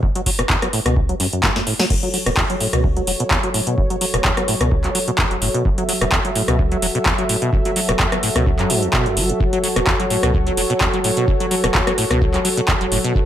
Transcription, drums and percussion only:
0.03 kick
0.15 closed hi-hat
0.26 kick, open hi-hat
0.39 cross-stick, closed hi-hat
0.50 kick, clap
0.62 cross-stick, closed hi-hat
0.73 open hi-hat
0.86 cross-stick, closed hi-hat
0.96 kick
1.09 closed hi-hat
1.20 open hi-hat
1.33 closed hi-hat
1.43 kick, snare, clap
1.56 snare, closed hi-hat
1.67 open hi-hat
1.79 snare, open hi-hat
1.90 kick, crash
2.03 closed hi-hat
2.14 open hi-hat
2.26 cross-stick, closed hi-hat
2.37 kick, clap
2.50 closed hi-hat
2.60 open hi-hat
2.73 cross-stick, closed hi-hat
2.84 kick
2.97 closed hi-hat
3.07 open hi-hat
3.20 closed hi-hat
3.31 kick, clap
3.43 closed hi-hat
3.54 open hi-hat
3.67 closed hi-hat
3.78 kick
3.90 closed hi-hat
4.01 open hi-hat
4.14 cross-stick, closed hi-hat
4.25 kick, clap
4.37 cross-stick, closed hi-hat
4.48 open hi-hat
4.61 cross-stick, closed hi-hat
4.72 kick
4.84 clap, closed hi-hat
4.95 open hi-hat
5.08 closed hi-hat
5.18 kick, clap
5.31 closed hi-hat
5.42 open hi-hat
5.54 closed hi-hat
5.65 kick
5.78 closed hi-hat
5.89 open hi-hat
6.01 cross-stick, closed hi-hat
6.12 kick, clap
6.25 closed hi-hat
6.36 open hi-hat
6.48 cross-stick, closed hi-hat
6.59 kick
6.72 closed hi-hat
6.82 open hi-hat
6.95 closed hi-hat
7.06 kick, clap
7.18 closed hi-hat
7.29 open hi-hat
7.42 closed hi-hat
7.53 kick
7.65 closed hi-hat
7.76 open hi-hat
7.89 cross-stick, closed hi-hat
8.00 kick, clap
8.12 cross-stick, closed hi-hat
8.23 open hi-hat
8.36 cross-stick, closed hi-hat
8.46 kick
8.59 clap, closed hi-hat
8.70 open hi-hat
8.83 closed hi-hat
8.93 kick, clap
9.06 closed hi-hat
9.17 open hi-hat
9.29 closed hi-hat
9.40 kick
9.53 closed hi-hat
9.64 open hi-hat
9.76 cross-stick, closed hi-hat
9.87 kick, clap
10.00 closed hi-hat
10.10 open hi-hat
10.23 cross-stick, closed hi-hat
10.34 kick
10.47 closed hi-hat
10.57 open hi-hat
10.70 closed hi-hat
10.81 kick, clap
10.94 closed hi-hat
11.04 open hi-hat
11.17 closed hi-hat
11.28 kick
11.40 closed hi-hat
11.51 open hi-hat
11.64 cross-stick, closed hi-hat
11.75 kick, clap
11.87 cross-stick, closed hi-hat
11.98 open hi-hat
12.11 cross-stick, closed hi-hat
12.21 kick
12.34 clap, closed hi-hat
12.45 open hi-hat
12.57 closed hi-hat
12.68 kick, clap
12.81 closed hi-hat
12.92 open hi-hat
13.04 closed hi-hat
13.15 kick

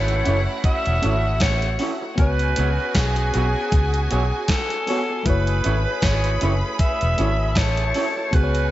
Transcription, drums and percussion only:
0.08 closed hi-hat
0.26 closed hi-hat
0.64 kick, closed hi-hat
0.86 closed hi-hat
1.03 closed hi-hat
1.40 kick, snare, closed hi-hat
1.62 closed hi-hat
1.79 open hi-hat
2.18 kick, closed hi-hat
2.39 closed hi-hat
2.56 closed hi-hat
2.95 kick, snare, closed hi-hat
3.16 closed hi-hat
3.34 closed hi-hat
3.72 kick, closed hi-hat
3.94 closed hi-hat
4.11 closed hi-hat
4.48 kick, snare, closed hi-hat
4.70 closed hi-hat
4.87 open hi-hat
5.26 kick, closed hi-hat
5.47 closed hi-hat
5.64 closed hi-hat
6.02 kick, snare, closed hi-hat
6.24 closed hi-hat
6.41 closed hi-hat
6.79 kick, closed hi-hat
7.01 closed hi-hat
7.18 closed hi-hat
7.55 kick, snare, closed hi-hat
7.77 closed hi-hat
7.94 open hi-hat
8.33 kick, closed hi-hat
8.55 closed hi-hat

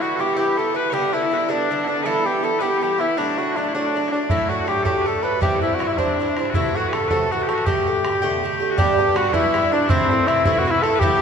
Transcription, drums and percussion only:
4.30 bodhran
4.40 bodhran
4.68 bodhran
4.85 bodhran
5.42 bodhran
5.53 bodhran
5.80 bodhran
5.98 bodhran
6.37 bodhran
6.45 bodhran
6.54 bodhran
6.65 bodhran
6.93 bodhran
7.10 bodhran
7.49 bodhran
7.58 bodhran
7.67 bodhran
7.77 bodhran
8.05 bodhran
8.78 bodhran
8.99 bodhran
9.16 bodhran
9.34 bodhran
9.54 bodhran
9.89 bodhran
10.10 bodhran
10.28 bodhran
10.45 bodhran
10.84 bodhran
11.01 bodhran

